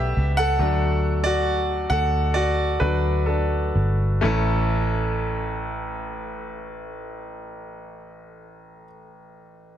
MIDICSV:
0, 0, Header, 1, 3, 480
1, 0, Start_track
1, 0, Tempo, 854701
1, 335, Time_signature, 4, 2, 24, 8
1, 819, Tempo, 904977
1, 1779, Tempo, 975610
1, 4980, End_track
2, 0, Start_track
2, 0, Title_t, "Grand piano"
2, 0, Program_c, 0, 0
2, 0, Control_c, 0, 64, 127
2, 0, Note_on_c, 0, 55, 56
2, 0, Note_on_c, 0, 57, 52
2, 0, Note_on_c, 0, 59, 63
2, 0, Note_on_c, 0, 62, 72
2, 0, Note_on_c, 0, 66, 75
2, 0, Note_on_c, 0, 67, 81
2, 0, Note_on_c, 0, 71, 91
2, 0, Note_on_c, 0, 74, 95
2, 0, Note_on_c, 0, 76, 98
2, 189, Note_off_c, 0, 76, 0
2, 192, Note_off_c, 0, 67, 0
2, 209, Note_on_c, 0, 78, 116
2, 218, Note_on_c, 0, 69, 94
2, 333, Note_on_c, 0, 54, 65
2, 337, Note_off_c, 0, 57, 0
2, 337, Note_on_c, 0, 57, 56
2, 339, Note_off_c, 0, 62, 0
2, 339, Note_on_c, 0, 62, 65
2, 341, Control_c, 0, 64, 0
2, 343, Note_off_c, 0, 55, 0
2, 343, Note_off_c, 0, 71, 0
2, 345, Note_off_c, 0, 59, 0
2, 345, Note_off_c, 0, 66, 0
2, 345, Note_off_c, 0, 74, 0
2, 427, Control_c, 0, 64, 127
2, 655, Note_off_c, 0, 54, 0
2, 657, Note_off_c, 0, 57, 0
2, 658, Note_off_c, 0, 62, 0
2, 671, Note_off_c, 0, 78, 0
2, 676, Note_off_c, 0, 69, 0
2, 694, Note_on_c, 0, 74, 105
2, 709, Note_on_c, 0, 66, 78
2, 1038, Note_off_c, 0, 66, 0
2, 1052, Note_on_c, 0, 78, 104
2, 1062, Note_on_c, 0, 69, 79
2, 1063, Note_off_c, 0, 74, 0
2, 1274, Note_off_c, 0, 78, 0
2, 1279, Note_off_c, 0, 69, 0
2, 1287, Note_on_c, 0, 74, 103
2, 1296, Note_on_c, 0, 66, 80
2, 1519, Note_off_c, 0, 66, 0
2, 1530, Note_on_c, 0, 71, 82
2, 1535, Note_on_c, 0, 54, 50
2, 1538, Note_off_c, 0, 74, 0
2, 1538, Note_on_c, 0, 57, 45
2, 1538, Note_on_c, 0, 62, 69
2, 1759, Note_off_c, 0, 54, 0
2, 1761, Note_off_c, 0, 57, 0
2, 1766, Note_off_c, 0, 62, 0
2, 1775, Note_on_c, 0, 69, 65
2, 1785, Note_off_c, 0, 71, 0
2, 1787, Note_on_c, 0, 62, 55
2, 2109, Note_off_c, 0, 69, 0
2, 2115, Note_off_c, 0, 62, 0
2, 2243, Note_on_c, 0, 57, 82
2, 2249, Note_on_c, 0, 61, 79
2, 2253, Note_on_c, 0, 33, 80
2, 2256, Note_on_c, 0, 64, 75
2, 2257, Control_c, 0, 64, 0
2, 2263, Note_on_c, 0, 69, 94
2, 2348, Control_c, 0, 64, 127
2, 4511, Note_off_c, 0, 57, 0
2, 4517, Note_off_c, 0, 61, 0
2, 4521, Note_off_c, 0, 33, 0
2, 4524, Note_off_c, 0, 64, 0
2, 4530, Note_off_c, 0, 69, 0
2, 4980, End_track
3, 0, Start_track
3, 0, Title_t, "Fingered electric bass"
3, 0, Program_c, 1, 33
3, 0, Note_on_c, 1, 35, 105
3, 74, Note_off_c, 1, 35, 0
3, 94, Note_on_c, 1, 37, 92
3, 317, Note_off_c, 1, 37, 0
3, 330, Note_on_c, 1, 38, 107
3, 1030, Note_off_c, 1, 38, 0
3, 1055, Note_on_c, 1, 38, 110
3, 1512, Note_off_c, 1, 38, 0
3, 1536, Note_on_c, 1, 38, 99
3, 1994, Note_off_c, 1, 38, 0
3, 2017, Note_on_c, 1, 31, 94
3, 2236, Note_off_c, 1, 31, 0
3, 2254, Note_on_c, 1, 33, 93
3, 4522, Note_off_c, 1, 33, 0
3, 4980, End_track
0, 0, End_of_file